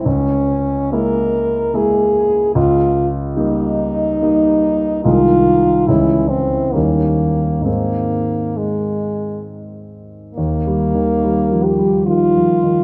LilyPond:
<<
  \new Staff \with { instrumentName = "French horn" } { \time 3/4 \key aes \major \tempo 4 = 71 des'4 bes'4 aes'4 | f'8 r8 ees'2 | f'4 fes'8 c'8 bes4 | bes4 aes4 r4 |
\key ees \major bes4. g'8 f'4 | }
  \new Staff \with { instrumentName = "Grand piano" } { \clef bass \time 3/4 \key aes \major des,4 <aes bes fes'>4 <aes bes fes'>4 | des,4 <g bes ees'>4 <g bes ees'>4 | <c, ees aes ees'>4 <des, fes aes des'>4 <ees, ees g des'>4 | <aes, ees aes c'>2. |
\key ees \major \tuplet 3/2 { ees,8 g8 ees8 g8 f8 g8 ees8 f8 ees8 } | }
>>